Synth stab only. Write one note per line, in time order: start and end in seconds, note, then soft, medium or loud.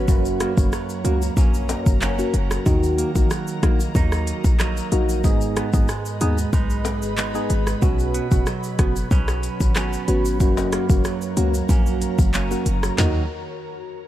0.08 0.53 A#3 medium
0.08 0.53 C#4 medium
0.08 0.53 F#4 loud
0.57 0.72 A#3 medium
0.57 0.73 C#4 medium
0.57 0.73 F#4 medium
1.05 1.22 A#3 medium
1.05 1.22 C#4 medium
1.05 1.22 F#4 medium
2.18 2.34 A#3 medium
2.18 2.34 C#4 medium
2.18 2.34 F#4 medium
2.66 3.11 A#3 loud
2.66 3.11 D#4 medium
2.66 3.11 F#4 loud
3.15 3.31 A#3 medium
3.15 3.31 D#4 medium
3.15 3.31 F#4 medium
3.63 3.80 A#3 medium
3.63 3.80 D#4 medium
3.63 3.80 F#4 medium
4.92 5.22 A#3 medium
4.92 5.22 D#4 medium
4.92 5.22 F#4 medium
5.24 5.69 B3 medium
5.24 5.70 D#4 medium
5.24 5.70 G#4 loud
5.73 5.89 B3 medium
5.73 5.89 D#4 medium
5.73 5.89 G#4 medium
6.21 6.38 B3 medium
6.21 6.38 D#4 medium
6.21 6.38 G#4 medium
7.35 7.50 B3 medium
7.35 7.50 D#4 medium
7.35 7.50 G#4 medium
7.82 8.27 B3 medium
7.82 8.28 C#4 medium
7.82 8.28 F#4 loud
8.31 8.47 B3 medium
8.31 8.47 C#4 medium
8.31 8.47 F#4 medium
8.79 8.96 B3 medium
8.79 8.96 C#4 medium
8.79 8.96 F#4 medium
10.08 10.38 B3 medium
10.08 10.38 C#4 medium
10.08 10.38 F#4 medium
10.40 10.85 A#3 loud
10.40 10.86 C#4 medium
10.40 10.86 F#4 loud
10.89 11.05 A#3 medium
10.89 11.05 C#4 medium
10.89 11.05 F#4 medium
11.37 11.54 A#3 medium
11.37 11.54 C#4 medium
11.37 11.54 F#4 medium
12.51 12.66 A#3 medium
12.51 12.66 C#4 medium
12.51 12.66 F#4 medium
12.98 13.23 A#3 medium
12.98 13.23 D#4 medium
12.98 13.23 F#4 loud